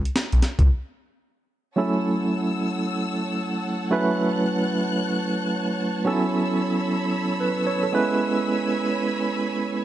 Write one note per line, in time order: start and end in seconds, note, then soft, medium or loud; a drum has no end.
0.05 closed hi-hat soft
0.16 snare loud
0.16 closed hi-hat medium
0.32 0.41 B1 medium
0.32 closed hi-hat soft
0.42 snare medium
0.42 closed hi-hat medium
0.59 0.67 C#2 medium
0.59 kick medium
0.59 closed hi-hat medium
1.76 3.86 F#3 medium
1.76 3.87 A3 medium
1.76 3.87 C#4 medium
1.76 3.87 E4 medium
1.76 3.88 A4 medium
1.76 9.85 C#5 medium
1.76 6.01 F#5 medium
1.76 7.88 A5 medium
1.76 3.88 E6 medium
3.90 6.01 F#3 medium
3.90 6.01 A3 medium
3.90 6.01 C#4 medium
3.90 6.02 E4 medium
3.90 6.02 B4 medium
3.90 6.03 F#6 medium
6.05 7.89 F#3 medium
6.05 7.89 B3 medium
6.05 7.89 C#4 medium
6.05 6.14 D#4 medium
6.05 7.11 A4 medium
6.05 7.91 B5 medium
6.05 9.85 E6 medium
6.13 7.93 E4 medium
7.40 7.65 B4 medium
7.67 7.82 C#5 medium
7.83 8.08 A4 medium
7.92 9.85 G#3 medium
7.92 9.85 B3 medium
7.92 9.85 C#4 medium
7.92 9.85 E4 medium
7.92 9.85 B4 medium
7.92 9.85 G#5 medium
7.92 9.85 B5 medium